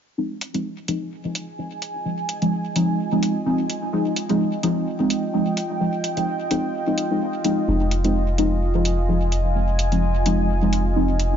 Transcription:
0.18 synth stab F3 G#3 C4 D#4, ambient pad F4 D#5 G#5
0.41 closed hi-hat
0.54 synth stab F3 G#3 C4 D#4, closed hi-hat
0.88 synth stab F3 G#3 C4 D#4, closed hi-hat
1.25 synth stab F3 G#3 C4 D#4
1.35 closed hi-hat
1.59 synth stab F3 G#3 C4 D#4
1.82 closed hi-hat
2.05 synth stab F3 G#3 C4 D#4
2.29 closed hi-hat
2.42 synth stab F3 G#3 C4 D#4, closed hi-hat
2.76 synth stab F3 G#3 C4 D#4, closed hi-hat
3.12 synth stab F3 G#3 C4 D#4
3.23 closed hi-hat
3.46 synth stab F3 G#3 C4 D#4
3.70 closed hi-hat
3.93 synth stab F3 G#3 C4 D#4, ambient pad G5
4.16 closed hi-hat
4.29 synth stab F3 G#3 C4 D#4, closed hi-hat
4.63 synth stab F3 G#3 C4 D#4, closed hi-hat
5.00 synth stab F3 G#3 C4 D#4
5.10 closed hi-hat
5.34 synth stab F3 G#3 C4 D#4
5.57 closed hi-hat
5.80 synth stab F3 G#3 C4 D#4
6.04 closed hi-hat
6.17 synth stab F3 G#3 C4 D#4, closed hi-hat
6.51 synth stab F3 G#3 C4 D#4, closed hi-hat
6.87 synth stab F3 G#3 C4 D#4
6.98 closed hi-hat
7.11 synth stab F3 G#3 C4 D#4
7.45 synth stab F3 G#3 C4 D#4, closed hi-hat
7.68 sub bass F1, synth stab F3 G#3 C4 D#4, ambient pad G#5
7.91 closed hi-hat
8.04 synth stab F3 G#3 C4 D#4, closed hi-hat
8.38 synth stab F3 G#3 C4 D#4, closed hi-hat
8.75 synth stab F3 G#3 C4 D#4
8.85 closed hi-hat
9.09 synth stab F3 G#3 C4 D#4
9.32 closed hi-hat
9.55 synth stab F3 G#3 C4 D#4
9.79 closed hi-hat
9.92 synth stab F3 G#3 C4 D#4, closed hi-hat
10.26 synth stab F3 G#3 C4 D#4, closed hi-hat
10.62 synth stab F3 G#3 C4 D#4
10.73 closed hi-hat
10.96 synth stab F3 G#3 C4 D#4
11.20 closed hi-hat

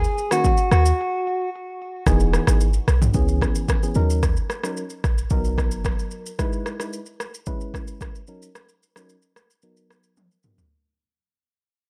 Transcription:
Already playing: clean electric guitar G#4
0.04 shaker
0.18 shaker
0.31 fm electric piano D#3 A#3 C#4 F#4, clean electric guitar F#4, cross-stick, shaker
0.44 kick, shaker
0.57 shaker
0.71 808-style bass D#2, clean electric guitar F#4, cross-stick, shaker
0.86 shaker
2.06 808-style bass E1, fm electric piano E3 B3 D#4 G#4, kick, cross-stick, shaker
2.20 shaker
2.33 cross-stick, shaker
2.47 808-style bass G#1, fm electric piano E3 B3 D#4 G#4, cross-stick, shaker
2.61 shaker
2.74 shaker
2.88 808-style bass B1, cross-stick, shaker
3.02 mid tom, shaker
3.14 808-style bass C#2, fm electric piano E3 B3 C#4 G#4, kick, shaker
3.28 shaker
3.42 kick, cross-stick, shaker
3.55 shaker
3.69 kick, cross-stick, shaker
3.83 fm electric piano E3 B3 C#4 G#4, shaker
3.95 808-style bass D#2, fm electric piano F#3 C#4 D#4 A#4, shaker
4.10 shaker
4.23 kick, cross-stick, shaker
4.37 shaker
4.50 cross-stick, shaker
4.63 fm electric piano F#3 C#4 D#4 A#4, cross-stick, shaker
4.77 shaker
4.90 shaker
5.04 808-style bass A#1, kick, cross-stick, shaker
5.18 shaker
5.30 808-style bass B1, fm electric piano F#3 B3 D#4 A#4, kick, shaker
5.45 shaker
5.58 kick, cross-stick, shaker
5.71 808-style bass F#1, shaker
5.85 kick, cross-stick, shaker
5.99 shaker
6.11 shaker
6.26 shaker
6.39 fm electric piano G#3 D#4 E4 B4, kick, cross-stick, shaker
6.53 shaker
6.66 cross-stick, shaker
6.80 fm electric piano G#3 D#4 E4 B4, cross-stick, shaker
6.93 shaker
7.06 shaker
7.20 cross-stick, shaker
7.34 shaker
7.46 fm electric piano G#3 C#4 E4 B4, kick, shaker
7.61 shaker
7.74 kick, cross-stick, shaker
7.87 shaker
8.01 kick, cross-stick, shaker
8.15 shaker
8.27 fm electric piano F#3 C#4 D#4 A#4, shaker
8.42 shaker
8.55 cross-stick, shaker
8.69 shaker
8.83 shaker
8.96 fm electric piano F#3 C#4 D#4 A#4, cross-stick, shaker
9.09 shaker
9.22 shaker
9.36 cross-stick, shaker
9.50 shaker
9.62 fm electric piano F#3 B3 D#4 A#4, shaker
9.77 shaker
9.91 cross-stick, shaker
10.03 shaker
10.17 high tom, shaker
10.31 shaker
10.43 fm electric piano F#3 B3 D#4 A#4, mid tom, shaker
10.58 floor tom, shaker

